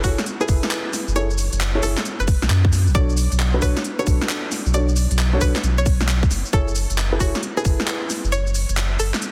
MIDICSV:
0, 0, Header, 1, 5, 480
1, 0, Start_track
1, 0, Key_signature, 3, "minor"
1, 0, Tempo, 447761
1, 1241, Time_signature, 4, 2, 24, 8
1, 9987, End_track
2, 0, Start_track
2, 0, Title_t, "Synth pluck"
2, 0, Program_c, 0, 84
2, 41, Note_on_c, 0, 66, 95
2, 281, Note_off_c, 0, 66, 0
2, 437, Note_on_c, 0, 68, 89
2, 573, Note_off_c, 0, 68, 0
2, 1242, Note_on_c, 0, 73, 98
2, 1482, Note_off_c, 0, 73, 0
2, 1962, Note_on_c, 0, 69, 101
2, 2202, Note_off_c, 0, 69, 0
2, 2357, Note_on_c, 0, 71, 90
2, 2493, Note_off_c, 0, 71, 0
2, 3162, Note_on_c, 0, 74, 100
2, 3402, Note_off_c, 0, 74, 0
2, 3882, Note_on_c, 0, 71, 99
2, 4122, Note_off_c, 0, 71, 0
2, 4278, Note_on_c, 0, 73, 94
2, 4414, Note_off_c, 0, 73, 0
2, 5082, Note_on_c, 0, 74, 100
2, 5322, Note_off_c, 0, 74, 0
2, 5802, Note_on_c, 0, 71, 97
2, 6042, Note_off_c, 0, 71, 0
2, 6198, Note_on_c, 0, 73, 90
2, 6334, Note_off_c, 0, 73, 0
2, 7003, Note_on_c, 0, 69, 101
2, 7242, Note_off_c, 0, 69, 0
2, 7722, Note_on_c, 0, 66, 98
2, 7962, Note_off_c, 0, 66, 0
2, 8117, Note_on_c, 0, 68, 92
2, 8253, Note_off_c, 0, 68, 0
2, 8921, Note_on_c, 0, 73, 99
2, 9161, Note_off_c, 0, 73, 0
2, 9642, Note_on_c, 0, 69, 98
2, 9882, Note_off_c, 0, 69, 0
2, 9987, End_track
3, 0, Start_track
3, 0, Title_t, "Grand piano"
3, 0, Program_c, 1, 0
3, 41, Note_on_c, 1, 64, 85
3, 41, Note_on_c, 1, 68, 75
3, 41, Note_on_c, 1, 69, 78
3, 41, Note_on_c, 1, 73, 95
3, 199, Note_off_c, 1, 64, 0
3, 199, Note_off_c, 1, 68, 0
3, 199, Note_off_c, 1, 69, 0
3, 199, Note_off_c, 1, 73, 0
3, 435, Note_on_c, 1, 64, 87
3, 435, Note_on_c, 1, 68, 80
3, 435, Note_on_c, 1, 69, 83
3, 435, Note_on_c, 1, 71, 100
3, 1220, Note_off_c, 1, 64, 0
3, 1220, Note_off_c, 1, 68, 0
3, 1220, Note_off_c, 1, 69, 0
3, 1220, Note_off_c, 1, 71, 0
3, 1240, Note_on_c, 1, 64, 81
3, 1240, Note_on_c, 1, 68, 78
3, 1240, Note_on_c, 1, 69, 76
3, 1240, Note_on_c, 1, 73, 91
3, 1340, Note_off_c, 1, 64, 0
3, 1340, Note_off_c, 1, 68, 0
3, 1340, Note_off_c, 1, 69, 0
3, 1341, Note_off_c, 1, 73, 0
3, 1876, Note_on_c, 1, 69, 83
3, 1877, Note_on_c, 1, 64, 89
3, 1877, Note_on_c, 1, 68, 80
3, 1877, Note_on_c, 1, 73, 101
3, 1931, Note_off_c, 1, 64, 0
3, 1931, Note_off_c, 1, 68, 0
3, 1931, Note_off_c, 1, 69, 0
3, 1931, Note_off_c, 1, 73, 0
3, 1960, Note_on_c, 1, 68, 73
3, 1960, Note_on_c, 1, 69, 71
3, 1960, Note_on_c, 1, 73, 89
3, 1961, Note_on_c, 1, 64, 78
3, 2060, Note_off_c, 1, 68, 0
3, 2061, Note_off_c, 1, 64, 0
3, 2061, Note_off_c, 1, 69, 0
3, 2061, Note_off_c, 1, 73, 0
3, 3161, Note_on_c, 1, 62, 91
3, 3161, Note_on_c, 1, 66, 85
3, 3161, Note_on_c, 1, 69, 83
3, 3161, Note_on_c, 1, 73, 99
3, 3319, Note_off_c, 1, 62, 0
3, 3319, Note_off_c, 1, 66, 0
3, 3319, Note_off_c, 1, 69, 0
3, 3319, Note_off_c, 1, 73, 0
3, 3796, Note_on_c, 1, 66, 85
3, 3797, Note_on_c, 1, 62, 89
3, 3797, Note_on_c, 1, 69, 84
3, 3797, Note_on_c, 1, 71, 103
3, 3861, Note_off_c, 1, 62, 0
3, 3861, Note_off_c, 1, 66, 0
3, 3861, Note_off_c, 1, 69, 0
3, 3861, Note_off_c, 1, 71, 0
3, 3881, Note_on_c, 1, 62, 86
3, 3881, Note_on_c, 1, 66, 80
3, 3881, Note_on_c, 1, 69, 78
3, 3881, Note_on_c, 1, 73, 97
3, 4039, Note_off_c, 1, 62, 0
3, 4039, Note_off_c, 1, 66, 0
3, 4039, Note_off_c, 1, 69, 0
3, 4039, Note_off_c, 1, 73, 0
3, 4278, Note_on_c, 1, 62, 91
3, 4278, Note_on_c, 1, 69, 83
3, 4278, Note_on_c, 1, 71, 98
3, 4279, Note_on_c, 1, 66, 83
3, 5062, Note_off_c, 1, 62, 0
3, 5062, Note_off_c, 1, 66, 0
3, 5062, Note_off_c, 1, 69, 0
3, 5062, Note_off_c, 1, 71, 0
3, 5083, Note_on_c, 1, 62, 85
3, 5083, Note_on_c, 1, 66, 79
3, 5083, Note_on_c, 1, 69, 78
3, 5083, Note_on_c, 1, 73, 89
3, 5182, Note_off_c, 1, 62, 0
3, 5182, Note_off_c, 1, 66, 0
3, 5182, Note_off_c, 1, 69, 0
3, 5182, Note_off_c, 1, 73, 0
3, 5717, Note_on_c, 1, 62, 89
3, 5717, Note_on_c, 1, 66, 82
3, 5717, Note_on_c, 1, 69, 83
3, 5717, Note_on_c, 1, 73, 100
3, 5771, Note_off_c, 1, 62, 0
3, 5771, Note_off_c, 1, 66, 0
3, 5771, Note_off_c, 1, 69, 0
3, 5771, Note_off_c, 1, 73, 0
3, 5801, Note_on_c, 1, 62, 82
3, 5801, Note_on_c, 1, 69, 75
3, 5801, Note_on_c, 1, 73, 89
3, 5901, Note_off_c, 1, 62, 0
3, 5901, Note_off_c, 1, 69, 0
3, 5901, Note_off_c, 1, 73, 0
3, 7001, Note_on_c, 1, 68, 81
3, 7001, Note_on_c, 1, 69, 83
3, 7001, Note_on_c, 1, 73, 98
3, 7002, Note_on_c, 1, 64, 89
3, 7159, Note_off_c, 1, 68, 0
3, 7159, Note_off_c, 1, 69, 0
3, 7159, Note_off_c, 1, 73, 0
3, 7160, Note_off_c, 1, 64, 0
3, 7637, Note_on_c, 1, 64, 90
3, 7638, Note_on_c, 1, 68, 84
3, 7638, Note_on_c, 1, 69, 83
3, 7638, Note_on_c, 1, 71, 100
3, 7701, Note_off_c, 1, 64, 0
3, 7701, Note_off_c, 1, 68, 0
3, 7701, Note_off_c, 1, 69, 0
3, 7702, Note_off_c, 1, 71, 0
3, 7721, Note_on_c, 1, 64, 85
3, 7721, Note_on_c, 1, 68, 77
3, 7721, Note_on_c, 1, 69, 78
3, 7721, Note_on_c, 1, 73, 93
3, 7879, Note_off_c, 1, 64, 0
3, 7879, Note_off_c, 1, 68, 0
3, 7879, Note_off_c, 1, 69, 0
3, 7879, Note_off_c, 1, 73, 0
3, 8117, Note_on_c, 1, 64, 90
3, 8117, Note_on_c, 1, 68, 80
3, 8118, Note_on_c, 1, 69, 84
3, 8118, Note_on_c, 1, 71, 96
3, 8901, Note_off_c, 1, 64, 0
3, 8901, Note_off_c, 1, 68, 0
3, 8901, Note_off_c, 1, 69, 0
3, 8901, Note_off_c, 1, 71, 0
3, 9987, End_track
4, 0, Start_track
4, 0, Title_t, "Sub bass"
4, 0, Program_c, 2, 38
4, 41, Note_on_c, 2, 30, 90
4, 169, Note_off_c, 2, 30, 0
4, 520, Note_on_c, 2, 30, 94
4, 649, Note_off_c, 2, 30, 0
4, 1157, Note_on_c, 2, 30, 84
4, 1593, Note_off_c, 2, 30, 0
4, 1637, Note_on_c, 2, 30, 101
4, 1937, Note_off_c, 2, 30, 0
4, 1961, Note_on_c, 2, 30, 92
4, 2090, Note_off_c, 2, 30, 0
4, 2358, Note_on_c, 2, 30, 96
4, 2542, Note_off_c, 2, 30, 0
4, 2598, Note_on_c, 2, 35, 94
4, 2667, Note_off_c, 2, 35, 0
4, 2681, Note_on_c, 2, 42, 90
4, 3077, Note_on_c, 2, 33, 94
4, 3093, Note_off_c, 2, 42, 0
4, 3146, Note_off_c, 2, 33, 0
4, 3160, Note_on_c, 2, 35, 99
4, 3513, Note_off_c, 2, 35, 0
4, 3558, Note_on_c, 2, 35, 100
4, 3858, Note_off_c, 2, 35, 0
4, 3880, Note_on_c, 2, 35, 92
4, 4009, Note_off_c, 2, 35, 0
4, 4360, Note_on_c, 2, 35, 93
4, 4489, Note_off_c, 2, 35, 0
4, 4997, Note_on_c, 2, 35, 83
4, 5433, Note_off_c, 2, 35, 0
4, 5477, Note_on_c, 2, 35, 98
4, 5778, Note_off_c, 2, 35, 0
4, 5801, Note_on_c, 2, 35, 93
4, 5930, Note_off_c, 2, 35, 0
4, 6040, Note_on_c, 2, 35, 83
4, 6737, Note_off_c, 2, 35, 0
4, 6761, Note_on_c, 2, 30, 92
4, 6890, Note_off_c, 2, 30, 0
4, 7001, Note_on_c, 2, 30, 105
4, 7353, Note_off_c, 2, 30, 0
4, 7398, Note_on_c, 2, 30, 100
4, 7698, Note_off_c, 2, 30, 0
4, 7721, Note_on_c, 2, 30, 93
4, 7850, Note_off_c, 2, 30, 0
4, 8201, Note_on_c, 2, 30, 98
4, 8330, Note_off_c, 2, 30, 0
4, 8837, Note_on_c, 2, 30, 84
4, 9273, Note_off_c, 2, 30, 0
4, 9318, Note_on_c, 2, 30, 95
4, 9618, Note_off_c, 2, 30, 0
4, 9641, Note_on_c, 2, 30, 95
4, 9770, Note_off_c, 2, 30, 0
4, 9987, End_track
5, 0, Start_track
5, 0, Title_t, "Drums"
5, 41, Note_on_c, 9, 36, 64
5, 41, Note_on_c, 9, 46, 109
5, 41, Note_on_c, 9, 82, 71
5, 148, Note_off_c, 9, 36, 0
5, 148, Note_off_c, 9, 46, 0
5, 148, Note_off_c, 9, 82, 0
5, 197, Note_on_c, 9, 38, 71
5, 197, Note_on_c, 9, 42, 36
5, 197, Note_on_c, 9, 82, 30
5, 281, Note_off_c, 9, 42, 0
5, 281, Note_off_c, 9, 82, 0
5, 281, Note_on_c, 9, 42, 66
5, 281, Note_on_c, 9, 82, 41
5, 305, Note_off_c, 9, 38, 0
5, 388, Note_off_c, 9, 42, 0
5, 388, Note_off_c, 9, 82, 0
5, 437, Note_on_c, 9, 82, 29
5, 520, Note_off_c, 9, 82, 0
5, 520, Note_on_c, 9, 46, 109
5, 520, Note_on_c, 9, 82, 70
5, 521, Note_on_c, 9, 36, 104
5, 627, Note_off_c, 9, 46, 0
5, 627, Note_off_c, 9, 82, 0
5, 628, Note_off_c, 9, 36, 0
5, 677, Note_on_c, 9, 38, 69
5, 677, Note_on_c, 9, 82, 31
5, 760, Note_off_c, 9, 82, 0
5, 760, Note_on_c, 9, 39, 127
5, 760, Note_on_c, 9, 42, 68
5, 760, Note_on_c, 9, 82, 42
5, 784, Note_off_c, 9, 38, 0
5, 867, Note_off_c, 9, 39, 0
5, 867, Note_off_c, 9, 42, 0
5, 867, Note_off_c, 9, 82, 0
5, 1001, Note_on_c, 9, 38, 34
5, 1001, Note_on_c, 9, 46, 112
5, 1001, Note_on_c, 9, 82, 70
5, 1108, Note_off_c, 9, 38, 0
5, 1108, Note_off_c, 9, 46, 0
5, 1108, Note_off_c, 9, 82, 0
5, 1158, Note_on_c, 9, 82, 31
5, 1241, Note_off_c, 9, 82, 0
5, 1241, Note_on_c, 9, 42, 65
5, 1241, Note_on_c, 9, 82, 41
5, 1348, Note_off_c, 9, 42, 0
5, 1348, Note_off_c, 9, 82, 0
5, 1397, Note_on_c, 9, 82, 29
5, 1481, Note_off_c, 9, 82, 0
5, 1481, Note_on_c, 9, 46, 110
5, 1481, Note_on_c, 9, 82, 74
5, 1588, Note_off_c, 9, 46, 0
5, 1588, Note_off_c, 9, 82, 0
5, 1637, Note_on_c, 9, 42, 65
5, 1637, Note_on_c, 9, 82, 30
5, 1721, Note_off_c, 9, 42, 0
5, 1721, Note_off_c, 9, 82, 0
5, 1721, Note_on_c, 9, 39, 127
5, 1721, Note_on_c, 9, 42, 66
5, 1721, Note_on_c, 9, 82, 42
5, 1828, Note_off_c, 9, 39, 0
5, 1828, Note_off_c, 9, 42, 0
5, 1828, Note_off_c, 9, 82, 0
5, 1960, Note_on_c, 9, 46, 108
5, 1960, Note_on_c, 9, 82, 70
5, 2067, Note_off_c, 9, 46, 0
5, 2067, Note_off_c, 9, 82, 0
5, 2116, Note_on_c, 9, 38, 70
5, 2116, Note_on_c, 9, 39, 64
5, 2116, Note_on_c, 9, 82, 30
5, 2201, Note_off_c, 9, 82, 0
5, 2201, Note_on_c, 9, 42, 65
5, 2201, Note_on_c, 9, 82, 40
5, 2224, Note_off_c, 9, 38, 0
5, 2224, Note_off_c, 9, 39, 0
5, 2308, Note_off_c, 9, 42, 0
5, 2308, Note_off_c, 9, 82, 0
5, 2357, Note_on_c, 9, 82, 29
5, 2441, Note_off_c, 9, 82, 0
5, 2441, Note_on_c, 9, 36, 112
5, 2441, Note_on_c, 9, 46, 107
5, 2441, Note_on_c, 9, 82, 69
5, 2548, Note_off_c, 9, 36, 0
5, 2548, Note_off_c, 9, 46, 0
5, 2548, Note_off_c, 9, 82, 0
5, 2597, Note_on_c, 9, 38, 69
5, 2597, Note_on_c, 9, 82, 30
5, 2680, Note_off_c, 9, 82, 0
5, 2680, Note_on_c, 9, 39, 127
5, 2680, Note_on_c, 9, 42, 66
5, 2680, Note_on_c, 9, 82, 41
5, 2705, Note_off_c, 9, 38, 0
5, 2788, Note_off_c, 9, 39, 0
5, 2788, Note_off_c, 9, 42, 0
5, 2788, Note_off_c, 9, 82, 0
5, 2837, Note_on_c, 9, 36, 110
5, 2922, Note_on_c, 9, 38, 34
5, 2922, Note_on_c, 9, 46, 109
5, 2922, Note_on_c, 9, 82, 73
5, 2944, Note_off_c, 9, 36, 0
5, 3029, Note_off_c, 9, 38, 0
5, 3029, Note_off_c, 9, 46, 0
5, 3029, Note_off_c, 9, 82, 0
5, 3077, Note_on_c, 9, 82, 30
5, 3160, Note_on_c, 9, 36, 126
5, 3161, Note_off_c, 9, 82, 0
5, 3161, Note_on_c, 9, 42, 62
5, 3161, Note_on_c, 9, 82, 40
5, 3268, Note_off_c, 9, 36, 0
5, 3268, Note_off_c, 9, 42, 0
5, 3268, Note_off_c, 9, 82, 0
5, 3316, Note_on_c, 9, 82, 30
5, 3401, Note_off_c, 9, 82, 0
5, 3401, Note_on_c, 9, 46, 108
5, 3401, Note_on_c, 9, 82, 75
5, 3508, Note_off_c, 9, 46, 0
5, 3508, Note_off_c, 9, 82, 0
5, 3557, Note_on_c, 9, 42, 62
5, 3557, Note_on_c, 9, 82, 30
5, 3641, Note_off_c, 9, 42, 0
5, 3641, Note_off_c, 9, 82, 0
5, 3641, Note_on_c, 9, 39, 127
5, 3641, Note_on_c, 9, 42, 63
5, 3641, Note_on_c, 9, 82, 44
5, 3748, Note_off_c, 9, 39, 0
5, 3748, Note_off_c, 9, 42, 0
5, 3748, Note_off_c, 9, 82, 0
5, 3880, Note_on_c, 9, 36, 68
5, 3881, Note_on_c, 9, 46, 105
5, 3881, Note_on_c, 9, 82, 72
5, 3988, Note_off_c, 9, 36, 0
5, 3988, Note_off_c, 9, 46, 0
5, 3988, Note_off_c, 9, 82, 0
5, 4037, Note_on_c, 9, 38, 69
5, 4037, Note_on_c, 9, 42, 35
5, 4037, Note_on_c, 9, 82, 32
5, 4121, Note_off_c, 9, 42, 0
5, 4121, Note_off_c, 9, 82, 0
5, 4121, Note_on_c, 9, 42, 64
5, 4121, Note_on_c, 9, 82, 42
5, 4144, Note_off_c, 9, 38, 0
5, 4228, Note_off_c, 9, 42, 0
5, 4228, Note_off_c, 9, 82, 0
5, 4278, Note_on_c, 9, 82, 29
5, 4361, Note_off_c, 9, 82, 0
5, 4361, Note_on_c, 9, 36, 112
5, 4361, Note_on_c, 9, 46, 101
5, 4361, Note_on_c, 9, 82, 72
5, 4468, Note_off_c, 9, 36, 0
5, 4468, Note_off_c, 9, 46, 0
5, 4468, Note_off_c, 9, 82, 0
5, 4518, Note_on_c, 9, 38, 70
5, 4518, Note_on_c, 9, 82, 31
5, 4601, Note_off_c, 9, 82, 0
5, 4601, Note_on_c, 9, 39, 127
5, 4601, Note_on_c, 9, 42, 66
5, 4601, Note_on_c, 9, 82, 44
5, 4625, Note_off_c, 9, 38, 0
5, 4708, Note_off_c, 9, 39, 0
5, 4708, Note_off_c, 9, 42, 0
5, 4708, Note_off_c, 9, 82, 0
5, 4841, Note_on_c, 9, 38, 34
5, 4841, Note_on_c, 9, 46, 105
5, 4841, Note_on_c, 9, 82, 75
5, 4948, Note_off_c, 9, 38, 0
5, 4948, Note_off_c, 9, 46, 0
5, 4948, Note_off_c, 9, 82, 0
5, 4997, Note_on_c, 9, 82, 31
5, 5081, Note_off_c, 9, 82, 0
5, 5081, Note_on_c, 9, 42, 66
5, 5081, Note_on_c, 9, 82, 43
5, 5188, Note_off_c, 9, 42, 0
5, 5188, Note_off_c, 9, 82, 0
5, 5237, Note_on_c, 9, 82, 31
5, 5320, Note_off_c, 9, 82, 0
5, 5320, Note_on_c, 9, 46, 103
5, 5320, Note_on_c, 9, 82, 78
5, 5428, Note_off_c, 9, 46, 0
5, 5428, Note_off_c, 9, 82, 0
5, 5477, Note_on_c, 9, 42, 65
5, 5477, Note_on_c, 9, 82, 32
5, 5560, Note_off_c, 9, 42, 0
5, 5560, Note_off_c, 9, 82, 0
5, 5560, Note_on_c, 9, 39, 127
5, 5560, Note_on_c, 9, 42, 66
5, 5560, Note_on_c, 9, 82, 45
5, 5668, Note_off_c, 9, 39, 0
5, 5668, Note_off_c, 9, 42, 0
5, 5668, Note_off_c, 9, 82, 0
5, 5801, Note_on_c, 9, 36, 65
5, 5801, Note_on_c, 9, 46, 99
5, 5801, Note_on_c, 9, 82, 73
5, 5908, Note_off_c, 9, 36, 0
5, 5908, Note_off_c, 9, 46, 0
5, 5908, Note_off_c, 9, 82, 0
5, 5958, Note_on_c, 9, 38, 65
5, 5958, Note_on_c, 9, 39, 64
5, 5958, Note_on_c, 9, 42, 36
5, 5958, Note_on_c, 9, 82, 32
5, 6041, Note_off_c, 9, 42, 0
5, 6041, Note_off_c, 9, 82, 0
5, 6041, Note_on_c, 9, 42, 65
5, 6041, Note_on_c, 9, 82, 43
5, 6065, Note_off_c, 9, 38, 0
5, 6065, Note_off_c, 9, 39, 0
5, 6149, Note_off_c, 9, 42, 0
5, 6149, Note_off_c, 9, 82, 0
5, 6198, Note_on_c, 9, 82, 30
5, 6281, Note_on_c, 9, 36, 107
5, 6282, Note_off_c, 9, 82, 0
5, 6282, Note_on_c, 9, 46, 97
5, 6282, Note_on_c, 9, 82, 76
5, 6389, Note_off_c, 9, 36, 0
5, 6389, Note_off_c, 9, 46, 0
5, 6389, Note_off_c, 9, 82, 0
5, 6438, Note_on_c, 9, 38, 66
5, 6438, Note_on_c, 9, 82, 33
5, 6522, Note_off_c, 9, 82, 0
5, 6522, Note_on_c, 9, 39, 127
5, 6522, Note_on_c, 9, 42, 66
5, 6522, Note_on_c, 9, 82, 46
5, 6545, Note_off_c, 9, 38, 0
5, 6630, Note_off_c, 9, 39, 0
5, 6630, Note_off_c, 9, 42, 0
5, 6630, Note_off_c, 9, 82, 0
5, 6678, Note_on_c, 9, 36, 111
5, 6678, Note_on_c, 9, 82, 30
5, 6762, Note_off_c, 9, 82, 0
5, 6762, Note_on_c, 9, 38, 31
5, 6762, Note_on_c, 9, 46, 102
5, 6762, Note_on_c, 9, 82, 78
5, 6785, Note_off_c, 9, 36, 0
5, 6869, Note_off_c, 9, 38, 0
5, 6869, Note_off_c, 9, 46, 0
5, 6869, Note_off_c, 9, 82, 0
5, 6919, Note_on_c, 9, 82, 32
5, 7001, Note_on_c, 9, 36, 120
5, 7002, Note_off_c, 9, 82, 0
5, 7002, Note_on_c, 9, 42, 66
5, 7002, Note_on_c, 9, 82, 45
5, 7109, Note_off_c, 9, 36, 0
5, 7110, Note_off_c, 9, 42, 0
5, 7110, Note_off_c, 9, 82, 0
5, 7160, Note_on_c, 9, 82, 32
5, 7242, Note_off_c, 9, 82, 0
5, 7242, Note_on_c, 9, 46, 102
5, 7242, Note_on_c, 9, 82, 83
5, 7349, Note_off_c, 9, 46, 0
5, 7349, Note_off_c, 9, 82, 0
5, 7399, Note_on_c, 9, 42, 65
5, 7399, Note_on_c, 9, 82, 34
5, 7483, Note_off_c, 9, 42, 0
5, 7483, Note_off_c, 9, 82, 0
5, 7483, Note_on_c, 9, 39, 125
5, 7483, Note_on_c, 9, 42, 69
5, 7483, Note_on_c, 9, 82, 46
5, 7590, Note_off_c, 9, 39, 0
5, 7590, Note_off_c, 9, 42, 0
5, 7590, Note_off_c, 9, 82, 0
5, 7721, Note_on_c, 9, 36, 62
5, 7723, Note_on_c, 9, 46, 99
5, 7723, Note_on_c, 9, 82, 79
5, 7828, Note_off_c, 9, 36, 0
5, 7830, Note_off_c, 9, 46, 0
5, 7830, Note_off_c, 9, 82, 0
5, 7880, Note_on_c, 9, 38, 64
5, 7880, Note_on_c, 9, 42, 37
5, 7880, Note_on_c, 9, 82, 33
5, 7963, Note_off_c, 9, 42, 0
5, 7963, Note_off_c, 9, 82, 0
5, 7963, Note_on_c, 9, 42, 68
5, 7963, Note_on_c, 9, 82, 44
5, 7987, Note_off_c, 9, 38, 0
5, 8070, Note_off_c, 9, 42, 0
5, 8070, Note_off_c, 9, 82, 0
5, 8119, Note_on_c, 9, 82, 31
5, 8201, Note_on_c, 9, 36, 109
5, 8202, Note_off_c, 9, 82, 0
5, 8202, Note_on_c, 9, 46, 97
5, 8202, Note_on_c, 9, 82, 76
5, 8308, Note_off_c, 9, 36, 0
5, 8310, Note_off_c, 9, 46, 0
5, 8310, Note_off_c, 9, 82, 0
5, 8358, Note_on_c, 9, 38, 64
5, 8358, Note_on_c, 9, 82, 34
5, 8442, Note_off_c, 9, 82, 0
5, 8442, Note_on_c, 9, 39, 123
5, 8442, Note_on_c, 9, 42, 68
5, 8442, Note_on_c, 9, 82, 45
5, 8466, Note_off_c, 9, 38, 0
5, 8549, Note_off_c, 9, 39, 0
5, 8549, Note_off_c, 9, 42, 0
5, 8549, Note_off_c, 9, 82, 0
5, 8682, Note_on_c, 9, 38, 32
5, 8682, Note_on_c, 9, 46, 104
5, 8682, Note_on_c, 9, 82, 79
5, 8790, Note_off_c, 9, 38, 0
5, 8790, Note_off_c, 9, 46, 0
5, 8790, Note_off_c, 9, 82, 0
5, 8838, Note_on_c, 9, 82, 32
5, 8923, Note_off_c, 9, 82, 0
5, 8923, Note_on_c, 9, 42, 68
5, 8923, Note_on_c, 9, 82, 44
5, 9030, Note_off_c, 9, 42, 0
5, 9030, Note_off_c, 9, 82, 0
5, 9079, Note_on_c, 9, 82, 32
5, 9163, Note_off_c, 9, 82, 0
5, 9163, Note_on_c, 9, 46, 111
5, 9163, Note_on_c, 9, 82, 80
5, 9271, Note_off_c, 9, 46, 0
5, 9271, Note_off_c, 9, 82, 0
5, 9319, Note_on_c, 9, 42, 68
5, 9319, Note_on_c, 9, 82, 33
5, 9402, Note_off_c, 9, 42, 0
5, 9402, Note_off_c, 9, 82, 0
5, 9402, Note_on_c, 9, 39, 120
5, 9402, Note_on_c, 9, 42, 72
5, 9402, Note_on_c, 9, 82, 47
5, 9510, Note_off_c, 9, 39, 0
5, 9510, Note_off_c, 9, 42, 0
5, 9510, Note_off_c, 9, 82, 0
5, 9643, Note_on_c, 9, 46, 107
5, 9643, Note_on_c, 9, 82, 79
5, 9750, Note_off_c, 9, 46, 0
5, 9750, Note_off_c, 9, 82, 0
5, 9799, Note_on_c, 9, 38, 66
5, 9799, Note_on_c, 9, 39, 59
5, 9799, Note_on_c, 9, 42, 39
5, 9799, Note_on_c, 9, 82, 34
5, 9882, Note_off_c, 9, 42, 0
5, 9882, Note_off_c, 9, 82, 0
5, 9882, Note_on_c, 9, 42, 69
5, 9882, Note_on_c, 9, 82, 44
5, 9906, Note_off_c, 9, 38, 0
5, 9906, Note_off_c, 9, 39, 0
5, 9987, Note_off_c, 9, 42, 0
5, 9987, Note_off_c, 9, 82, 0
5, 9987, End_track
0, 0, End_of_file